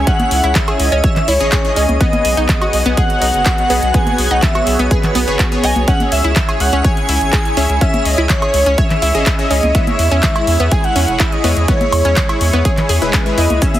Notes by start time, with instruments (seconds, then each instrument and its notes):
Already playing: analog synth pad E4 G#4 C#5
0.07 supersaw synth C#4 G#4 E5, synth arpeggio sound C#4 C#5, digital synth lead F#5, soft synth lead F#5, kick, closed hi-hat
0.19 closed hi-hat, high conga
0.31 analog synth bass C#2, open hi-hat
0.44 analog synth bass C#2, synth arpeggio sound E4 E5, closed hi-hat
0.55 digital synth lead E5, soft synth lead E5, kick, clap, closed hi-hat, low conga
0.68 synth arpeggio sound G#4 G#5, closed hi-hat, high woodblock
0.80 analog synth bass C#2, digital synth lead D#5, soft synth lead D#5, open hi-hat
0.92 analog synth bass C#2, synth arpeggio sound C#4 C#5, closed hi-hat
1.04 synth arpeggio sound C#5 C#6, soft synth lead E5, digital synth lead E5, kick, closed hi-hat
1.16 clap, closed hi-hat, low conga
1.28 analog synth bass C#2, synth arpeggio sound E4 E5, digital synth lead C#5, soft synth lead C#5, open hi-hat
1.40 analog synth bass G#1, supersaw synth C#4 G#4 D#5, closed hi-hat
1.52 synth arpeggio sound G#4 G#5, kick, clap, closed hi-hat
1.65 supersaw synth C#4 G#4 D#5, closed hi-hat
1.76 analog synth bass C#2, synth arpeggio sound C#4 C#5, soft synth lead D#5, digital synth lead D#5, open hi-hat
1.89 analog synth bass C#2, closed hi-hat, high conga
2.01 synth arpeggio sound B3 B4, analog synth pad B3 F#4 C#5 F#5, supersaw synth B3 G#4 D#5, kick, closed hi-hat
2.13 closed hi-hat, high conga
2.25 analog synth bass B1, open hi-hat
2.37 analog synth bass B1, synth arpeggio sound D#4 D#5, closed hi-hat
2.49 kick, clap, closed hi-hat, low conga
2.61 synth arpeggio sound F#4 F#5, closed hi-hat, high woodblock
2.73 analog synth bass B1, open hi-hat
2.86 analog synth bass B1, synth arpeggio sound B3 B4, closed hi-hat
2.97 synth arpeggio sound G#4 G#5, digital synth lead F#5, soft synth lead F#5, kick, closed hi-hat
3.10 closed hi-hat
3.21 analog synth bass B1, synth arpeggio sound D#4 D#5, open hi-hat
3.34 analog synth bass F#1, closed hi-hat
3.46 synth arpeggio sound F#4 F#5, kick, clap, closed hi-hat
3.58 closed hi-hat
3.70 analog synth bass B1, synth arpeggio sound B3 B4, supersaw synth B3 G#4 D#5, open hi-hat
3.83 analog synth bass B1, closed hi-hat
3.94 supersaw synth B3 G#4 F#5, synth arpeggio sound B3 B4, soft synth lead G#5, digital synth lead G#5, kick, closed hi-hat
4.07 closed hi-hat, high conga
4.18 analog synth bass B1, open hi-hat
4.31 analog synth bass B1, synth arpeggio sound D#4 D#5, soft synth lead F#5, digital synth lead F#5, closed hi-hat
4.42 soft synth lead E5, digital synth lead E5, kick, clap, closed hi-hat, low conga
4.55 synth arpeggio sound F#4 F#5, closed hi-hat, high woodblock
4.67 analog synth bass B1, open hi-hat
4.79 analog synth bass B1, synth arpeggio sound B3 B4, soft synth lead D#5, digital synth lead D#5, closed hi-hat
4.91 synth arpeggio sound G#4 G#5, soft synth lead B4, digital synth lead B4, kick, closed hi-hat
5.03 clap, closed hi-hat, low conga
5.15 analog synth bass B1, synth arpeggio sound B3 B4, open hi-hat
5.28 analog synth bass F#1, supersaw synth B3 G#4 C#5, closed hi-hat
5.39 synth arpeggio sound F#4 F#5, kick, clap, closed hi-hat
5.52 supersaw synth B3 G#4 C#5, closed hi-hat
5.63 analog synth bass B1, synth arpeggio sound D#5 D#6, digital synth lead G#5, soft synth lead G#5, open hi-hat
5.76 analog synth bass B1, closed hi-hat, high conga
5.88 supersaw synth C#4 G#4 E5, synth arpeggio sound C#4 C#5, analog synth pad E4, soft synth lead F#5, digital synth lead F#5, kick, closed hi-hat
6.00 closed hi-hat, high conga
6.12 analog synth bass C#2, soft synth lead E5, digital synth lead E5, open hi-hat
6.24 analog synth bass C#2, synth arpeggio sound E4 E5, closed hi-hat
6.36 kick, clap, closed hi-hat, low conga
6.49 synth arpeggio sound G#4 G#5, closed hi-hat, high woodblock
6.60 analog synth bass C#2, digital synth lead F#5, soft synth lead F#5, open hi-hat
6.73 analog synth bass C#2, synth arpeggio sound C#4 C#5, closed hi-hat
6.84 synth arpeggio sound C#5 C#6, digital synth lead G#5, soft synth lead G#5, kick, closed hi-hat
6.97 closed hi-hat
7.09 analog synth bass C#2, synth arpeggio sound E4 E5, open hi-hat
7.21 analog synth bass G#1, closed hi-hat
7.33 synth arpeggio sound G#4 G#5, kick, clap, closed hi-hat
7.45 closed hi-hat
7.57 analog synth bass C#2, supersaw synth C#4 G#4 E5, synth arpeggio sound C#4 C#5, open hi-hat
7.70 analog synth bass C#2, closed hi-hat
7.81 synth arpeggio sound C#4 C#5, supersaw synth C#4 G#4 E5, digital synth lead E5, soft synth lead E5, kick, closed hi-hat
7.94 closed hi-hat, high conga
8.05 analog synth bass C#2, digital synth lead D#5, soft synth lead D#5, open hi-hat
8.18 analog synth bass C#2, synth arpeggio sound E4 E5
8.29 soft synth lead C#5, digital synth lead C#5, kick, clap, closed hi-hat, low conga
8.42 synth arpeggio sound G#4 G#5, closed hi-hat, high woodblock
8.54 analog synth bass C#2, open hi-hat
8.66 analog synth bass C#2, synth arpeggio sound C#4 C#5, closed hi-hat
8.78 synth arpeggio sound C#5 C#6, soft synth lead E5, digital synth lead E5, kick, closed hi-hat
8.90 clap, closed hi-hat, low conga
9.02 analog synth bass C#2, synth arpeggio sound E4 E5, open hi-hat
9.15 analog synth bass G#1, supersaw synth C#4 G#4 D#5, closed hi-hat
9.26 synth arpeggio sound G#4 G#5, kick, clap, closed hi-hat
9.39 supersaw synth C#4 G#4 D#5, closed hi-hat
9.51 analog synth bass C#2, synth arpeggio sound C#4 C#5, soft synth lead D#5, digital synth lead D#5, open hi-hat
9.63 analog synth bass C#2, closed hi-hat, high conga
9.75 supersaw synth G#3 E4 C#5, synth arpeggio sound B3 B4, analog synth pad G#4, digital synth lead E5, soft synth lead E5, kick, closed hi-hat
9.87 closed hi-hat, high conga
9.99 analog synth bass E2, open hi-hat
10.11 analog synth bass E2, synth arpeggio sound C#4 C#5, closed hi-hat
10.23 kick, clap, closed hi-hat, low conga
10.36 synth arpeggio sound E4 E5, closed hi-hat, high woodblock
10.47 analog synth bass E2, open hi-hat
10.60 analog synth bass E2, synth arpeggio sound B3 B4, closed hi-hat
10.71 synth arpeggio sound G#4 G#5, digital synth lead G#5, soft synth lead G#5, kick, closed hi-hat
10.84 digital synth lead F#5, soft synth lead F#5, closed hi-hat
10.96 analog synth bass E2, synth arpeggio sound C#4 C#5, open hi-hat
11.08 analog synth bass E1, closed hi-hat
11.20 synth arpeggio sound E4 E5, digital synth lead E5, soft synth lead E5, kick, clap, closed hi-hat
11.32 digital synth lead D#5, soft synth lead D#5, closed hi-hat
11.44 analog synth bass E2, supersaw synth G#3 E4 C#5, synth arpeggio sound B3 B4, open hi-hat
11.57 analog synth bass E2, closed hi-hat
11.68 supersaw synth G#3 E4 C#5, synth arpeggio sound B3 B4, digital synth lead C#5, soft synth lead C#5, kick, closed hi-hat
11.81 closed hi-hat, high conga
11.92 analog synth bass E2, open hi-hat, high woodblock
12.05 analog synth bass E2, synth arpeggio sound C#4 C#5, closed hi-hat
12.16 kick, clap, closed hi-hat, low conga
12.29 synth arpeggio sound E4 E5, closed hi-hat, high woodblock
12.41 analog synth bass E2, open hi-hat
12.53 analog synth bass E2, synth arpeggio sound B3 B4, closed hi-hat
12.65 synth arpeggio sound G#4 G#5, kick, closed hi-hat
12.77 clap, closed hi-hat, low conga
12.89 analog synth bass E2, synth arpeggio sound G#4 G#5, open hi-hat
13.02 analog synth bass E1, supersaw synth G#3 E4 B4, closed hi-hat
13.13 synth arpeggio sound C#4 C#5, kick, clap, closed hi-hat
13.26 supersaw synth G#3 E4 B4, closed hi-hat
13.38 analog synth bass E2, synth arpeggio sound E4 E5, digital synth lead D#5, soft synth lead D#5, open hi-hat
13.50 analog synth bass C#2, closed hi-hat, high conga
13.62 supersaw synth C#4 G#4 E5, synth arpeggio sound C#4 C#5, synth texture E4 D#6, analog synth pad C#5, soft synth lead E5, digital synth lead E5, kick, closed hi-hat, cabasa
13.74 closed hi-hat, high conga, cabasa